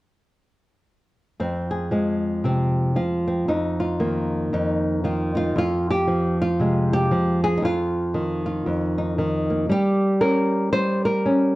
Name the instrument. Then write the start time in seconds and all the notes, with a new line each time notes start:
nylon-string guitar
1.40 F2 C4
1.71 G#4
1.91 F3 G#3
2.44 C3 C4
2.96 F3 F4
3.28 C4
3.48 F2 D#4
3.80 F4
4.00 D#3 A#3
4.53 F2 D#4
5.04 D#3 F4
5.35 D#4 F4
5.56 F2 F4
5.91 G4
6.08 F3
6.42 F4
6.60 C3 G#3
6.93 G4
7.11 F3
7.44 G#4
7.57 D#4
7.62 F2 F4
8.14 D#3
8.46 F4
8.66 F2
8.98 D#4
9.18 D#3
9.50 A#3
9.69 G3 G4
10.21 C#4 A#4
10.73 G3 C5
11.05 A#4
11.26 C#4